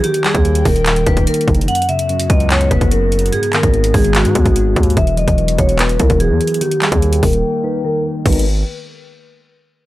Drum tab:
CC |------------------------------------------------|------------------------------------------------|------------------------------------------------|------------------------------------------------|
HH |x--x--x--x--x--x--o--x--x--x--x--x--x-x-x-x-x-x-|x-x-x-x--x--x--x--x--x--x--x--x--x--x-----x-x-x-|x--x--x--x--x--x--o--x--x--x--x--x--x-----x-x-x-|x--x--x--x--x--x--x--x--x--x--x--x--x-----x-x-x-|
CP |------x-----------------x-----------------------|------------------------x-----------------------|------x-----------------x-----------------------|------------------------x-----------------------|
BD |---------o--------o-----------o--o--------o-----|------------------o-----------o--o--------------|---------o--------o-----------o--o--------o-----|o--------o--------o-----------o--o--------------|

CC |------------------------------------------------|x-----------------------------------------------|
HH |x--x--x--x--x--x--o--x--------------------------|x-x-x-------------------------------------------|
CP |------x-----------------------------------------|------------------------------------------------|
BD |---------o--------o-----------------------------|o-----------------------------------------------|